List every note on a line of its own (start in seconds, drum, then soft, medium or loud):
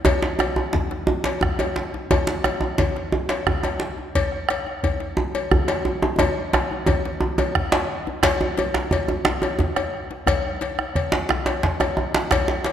0.05 bombo low medium
0.05 cowbell medium
0.05 djembe tone loud
0.05 djembe bass medium
0.22 bombo rim soft
0.22 djembe slap medium
0.39 bombo rim medium
0.39 cowbell soft
0.39 djembe slap medium
0.39 djembe tone medium
0.56 djembe slap soft
0.56 djembe tone medium
0.73 bombo low medium
0.73 djembe slap medium
0.73 djembe bass medium
0.91 bombo rim soft
0.91 djembe slap medium
1.07 djembe tone loud
1.24 cowbell soft
1.24 djembe slap medium
1.26 djembe slap soft
1.26 djembe tone medium
1.41 bombo rim loud
1.41 bombo low medium
1.41 djembe slap medium
1.41 djembe tone medium
1.41 djembe bass medium
1.59 cowbell medium
1.59 djembe tone medium
1.76 djembe slap medium
1.94 djembe slap medium
1.94 djembe tone soft
2.11 bombo low medium
2.11 cowbell medium
2.11 djembe tone loud
2.11 djembe bass medium
2.27 bombo rim soft
2.27 djembe slap medium
2.44 bombo rim medium
2.44 cowbell soft
2.44 djembe slap medium
2.44 djembe tone medium
2.61 djembe slap soft
2.61 djembe tone medium
2.62 djembe tone soft
2.78 bombo low loud
2.78 cowbell soft
2.78 djembe slap medium
2.78 djembe bass medium
2.96 bombo rim soft
2.96 djembe slap medium
3.12 djembe tone medium
3.29 cowbell soft
3.29 djembe slap medium
3.29 djembe slap soft
3.29 djembe tone soft
3.47 bombo rim loud
3.47 bombo low loud
3.47 djembe slap medium
3.47 djembe tone medium
3.47 djembe bass medium
3.63 cowbell soft
3.63 djembe tone medium
3.80 djembe slap medium
3.98 djembe tone soft
4.15 bombo low medium
4.15 cowbell medium
4.15 djembe bass medium
4.32 bombo rim soft
4.49 bombo rim medium
4.49 cowbell soft
4.49 djembe slap medium
4.67 djembe slap soft
4.67 djembe tone soft
4.83 bombo low medium
4.83 cowbell soft
4.83 djembe bass medium
5.00 bombo rim soft
5.00 djembe slap medium
5.17 djembe tone loud
5.35 cowbell soft
5.35 djembe slap soft
5.35 djembe tone medium
5.51 bombo rim medium
5.51 bombo low loud
5.51 djembe slap medium
5.51 djembe bass medium
5.68 cowbell soft
5.68 djembe slap medium
5.85 djembe tone medium
6.02 djembe slap medium
6.02 djembe tone loud
6.02 djembe tone medium
6.19 bombo low medium
6.19 cowbell medium
6.19 djembe tone loud
6.19 djembe bass medium
6.53 bombo rim medium
6.53 cowbell soft
6.53 djembe slap medium
6.53 djembe tone loud
6.71 djembe tone medium
6.86 bombo rim soft
6.86 bombo low loud
6.86 cowbell soft
6.86 djembe slap soft
6.86 djembe tone loud
6.86 djembe bass medium
7.05 bombo rim soft
7.05 djembe slap medium
7.21 bombo rim soft
7.21 djembe tone medium
7.38 bombo rim soft
7.38 cowbell soft
7.38 djembe tone loud
7.38 djembe tone medium
7.55 bombo rim loud
7.55 bombo low loud
7.55 djembe slap medium
7.55 djembe bass medium
7.72 bombo rim soft
7.72 cowbell soft
7.72 djembe slap loud
8.06 bombo rim soft
8.06 djembe slap medium
8.06 djembe tone medium
8.23 bombo rim medium
8.23 bombo low medium
8.23 cowbell medium
8.23 djembe slap loud
8.23 djembe tone medium
8.23 djembe bass medium
8.41 djembe tone medium
8.57 cowbell soft
8.57 djembe slap medium
8.57 djembe tone medium
8.74 bombo rim medium
8.74 djembe slap medium
8.74 djembe tone medium
8.91 bombo rim soft
8.91 bombo low medium
8.91 cowbell medium
8.91 djembe tone medium
9.08 bombo rim soft
9.08 djembe slap medium
9.08 djembe tone medium
9.25 bombo rim medium
9.25 djembe slap loud
9.25 djembe tone medium
9.25 djembe bass medium
9.42 cowbell soft
9.42 djembe tone medium
9.59 bombo low loud
9.59 djembe slap medium
9.59 djembe tone medium
9.76 bombo rim medium
9.76 cowbell soft
9.76 djembe tone medium
9.94 bombo rim soft
9.94 djembe slap soft
10.11 djembe slap medium
10.27 bombo rim medium
10.27 bombo low medium
10.27 cowbell medium
10.27 djembe tone medium
10.27 djembe bass medium
10.61 cowbell soft
10.61 djembe slap medium
10.79 bombo rim medium
10.79 djembe tone medium
10.95 bombo rim soft
10.95 bombo low medium
10.95 cowbell soft
10.95 djembe slap soft
11.12 bombo rim soft
11.12 djembe slap loud
11.12 djembe slap medium
11.29 bombo rim loud
11.29 djembe slap medium
11.29 djembe tone medium
11.29 djembe bass medium
11.46 cowbell soft
11.46 djembe slap medium
11.63 bombo low loud
11.63 djembe slap medium
11.80 bombo rim medium
11.80 cowbell medium
11.80 djembe tone medium
11.97 bombo rim soft
11.97 djembe slap soft
11.97 djembe tone medium
12.14 djembe slap loud
12.14 djembe slap soft
12.31 bombo rim medium
12.31 bombo low medium
12.31 cowbell medium
12.31 djembe slap medium
12.31 djembe tone medium
12.31 djembe bass medium
12.48 djembe slap medium
12.64 cowbell soft
12.64 djembe slap medium